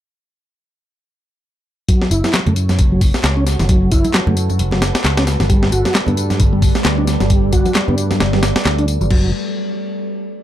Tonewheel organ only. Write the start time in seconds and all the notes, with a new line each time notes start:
1.89 F#3
2.11 E4
2.34 F#3
2.47 A3
2.92 F#3
3.37 C#4
3.60 E3
3.69 F#3
3.92 E4
4.14 F#3
4.27 A3
4.72 F#3
5.17 C#4
5.40 E3
5.50 G3
5.72 F#4
5.95 G3
6.08 B3
6.53 G3
6.98 D4
7.21 F#3
7.30 G3
7.53 F#4
7.75 G3
7.88 B3
8.33 G3
8.79 D4
9.01 F#3
9.11 F#3